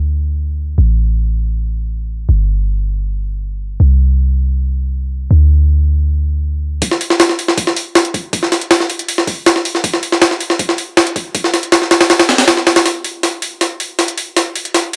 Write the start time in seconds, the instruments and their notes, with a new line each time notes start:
Already playing: 808-style bass D2
0.78 808-style bass A1
2.29 808-style bass G1
3.80 808-style bass C2
5.31 808-style bass D2
6.82 kick, open hi-hat
6.91 snare
7.01 open hi-hat
7.10 snare
7.20 snare, open hi-hat
7.29 snare
7.39 open hi-hat
7.48 snare
7.58 kick, open hi-hat
7.67 snare
7.77 open hi-hat
7.95 snare, open hi-hat
8.05 closed hi-hat
8.14 kick, open hi-hat
8.33 kick, open hi-hat
8.43 snare
8.52 snare, open hi-hat
8.61 closed hi-hat
8.71 snare, open hi-hat
8.80 snare
8.90 open hi-hat
8.99 closed hi-hat
9.08 open hi-hat
9.18 snare
9.27 kick, open hi-hat
9.46 snare, open hi-hat
9.56 snare
9.65 open hi-hat
9.75 snare
9.84 kick, open hi-hat
9.94 snare
10.03 open hi-hat
10.12 snare
10.22 snare, open hi-hat
10.31 snare
10.40 open hi-hat
10.50 snare
10.59 kick, open hi-hat
10.69 snare
10.78 open hi-hat
10.97 snare, open hi-hat
11.07 closed hi-hat
11.16 kick, open hi-hat
11.35 kick, open hi-hat
11.44 snare
11.54 snare, open hi-hat
11.63 closed hi-hat
11.72 snare, open hi-hat
11.82 snare
11.91 snare, open hi-hat
12.01 snare, open hi-hat
12.10 snare, open hi-hat
12.19 snare, open hi-hat
12.29 snare, open hi-hat
12.38 snare, open hi-hat
12.48 snare, open hi-hat
12.57 snare
12.67 snare, open hi-hat
12.76 snare, open hi-hat
12.86 snare, open hi-hat
13.04 open hi-hat
13.23 snare, open hi-hat
13.42 open hi-hat
13.61 snare, open hi-hat
13.80 open hi-hat
13.99 snare, open hi-hat
14.08 closed hi-hat
14.18 open hi-hat
14.37 snare, open hi-hat
14.56 open hi-hat
14.65 closed hi-hat
14.74 snare, open hi-hat